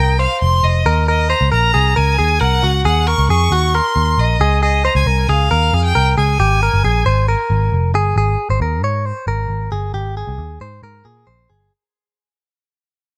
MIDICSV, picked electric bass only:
0, 0, Header, 1, 2, 480
1, 0, Start_track
1, 0, Key_signature, -4, "major"
1, 0, Tempo, 443131
1, 1173, Time_signature, 4, 2, 24, 8
1, 14273, End_track
2, 0, Start_track
2, 0, Title_t, "Picked electric bass"
2, 0, Program_c, 0, 34
2, 0, Note_on_c, 0, 36, 95
2, 277, Note_off_c, 0, 36, 0
2, 456, Note_on_c, 0, 29, 105
2, 659, Note_off_c, 0, 29, 0
2, 684, Note_on_c, 0, 29, 97
2, 892, Note_off_c, 0, 29, 0
2, 927, Note_on_c, 0, 39, 104
2, 1439, Note_off_c, 0, 39, 0
2, 1526, Note_on_c, 0, 37, 90
2, 1630, Note_off_c, 0, 37, 0
2, 1650, Note_on_c, 0, 34, 102
2, 1855, Note_off_c, 0, 34, 0
2, 1894, Note_on_c, 0, 36, 115
2, 2097, Note_off_c, 0, 36, 0
2, 2138, Note_on_c, 0, 37, 95
2, 2339, Note_off_c, 0, 37, 0
2, 2376, Note_on_c, 0, 39, 99
2, 2577, Note_off_c, 0, 39, 0
2, 2614, Note_on_c, 0, 36, 89
2, 2817, Note_off_c, 0, 36, 0
2, 2848, Note_on_c, 0, 37, 93
2, 3053, Note_off_c, 0, 37, 0
2, 3085, Note_on_c, 0, 39, 108
2, 3393, Note_off_c, 0, 39, 0
2, 3445, Note_on_c, 0, 37, 90
2, 3549, Note_off_c, 0, 37, 0
2, 3565, Note_on_c, 0, 41, 107
2, 3771, Note_off_c, 0, 41, 0
2, 3799, Note_on_c, 0, 39, 100
2, 4109, Note_off_c, 0, 39, 0
2, 4288, Note_on_c, 0, 39, 111
2, 4492, Note_off_c, 0, 39, 0
2, 4526, Note_on_c, 0, 34, 99
2, 4731, Note_off_c, 0, 34, 0
2, 4765, Note_on_c, 0, 37, 92
2, 5276, Note_off_c, 0, 37, 0
2, 5363, Note_on_c, 0, 37, 93
2, 5467, Note_off_c, 0, 37, 0
2, 5482, Note_on_c, 0, 36, 101
2, 5688, Note_off_c, 0, 36, 0
2, 5727, Note_on_c, 0, 37, 90
2, 5931, Note_off_c, 0, 37, 0
2, 5974, Note_on_c, 0, 39, 97
2, 6175, Note_off_c, 0, 39, 0
2, 6209, Note_on_c, 0, 41, 99
2, 6412, Note_off_c, 0, 41, 0
2, 6453, Note_on_c, 0, 36, 95
2, 6655, Note_off_c, 0, 36, 0
2, 6691, Note_on_c, 0, 37, 102
2, 6893, Note_off_c, 0, 37, 0
2, 6928, Note_on_c, 0, 32, 108
2, 7234, Note_off_c, 0, 32, 0
2, 7294, Note_on_c, 0, 31, 91
2, 7393, Note_off_c, 0, 31, 0
2, 7412, Note_on_c, 0, 34, 96
2, 7614, Note_off_c, 0, 34, 0
2, 7646, Note_on_c, 0, 32, 100
2, 7952, Note_off_c, 0, 32, 0
2, 8124, Note_on_c, 0, 32, 102
2, 8329, Note_off_c, 0, 32, 0
2, 8365, Note_on_c, 0, 29, 89
2, 8603, Note_off_c, 0, 29, 0
2, 8603, Note_on_c, 0, 31, 91
2, 8809, Note_off_c, 0, 31, 0
2, 8839, Note_on_c, 0, 32, 103
2, 9047, Note_off_c, 0, 32, 0
2, 9203, Note_on_c, 0, 32, 99
2, 9307, Note_off_c, 0, 32, 0
2, 9316, Note_on_c, 0, 39, 104
2, 9558, Note_off_c, 0, 39, 0
2, 9558, Note_on_c, 0, 44, 91
2, 9868, Note_off_c, 0, 44, 0
2, 10041, Note_on_c, 0, 32, 100
2, 10248, Note_off_c, 0, 32, 0
2, 10273, Note_on_c, 0, 32, 88
2, 10484, Note_off_c, 0, 32, 0
2, 10524, Note_on_c, 0, 31, 98
2, 10730, Note_off_c, 0, 31, 0
2, 10764, Note_on_c, 0, 32, 94
2, 11072, Note_off_c, 0, 32, 0
2, 11128, Note_on_c, 0, 36, 93
2, 11231, Note_off_c, 0, 36, 0
2, 11245, Note_on_c, 0, 39, 97
2, 11451, Note_off_c, 0, 39, 0
2, 11490, Note_on_c, 0, 44, 97
2, 11694, Note_off_c, 0, 44, 0
2, 11727, Note_on_c, 0, 44, 100
2, 11932, Note_off_c, 0, 44, 0
2, 11968, Note_on_c, 0, 46, 98
2, 12173, Note_off_c, 0, 46, 0
2, 12209, Note_on_c, 0, 34, 82
2, 12414, Note_off_c, 0, 34, 0
2, 12457, Note_on_c, 0, 31, 92
2, 12659, Note_off_c, 0, 31, 0
2, 14273, End_track
0, 0, End_of_file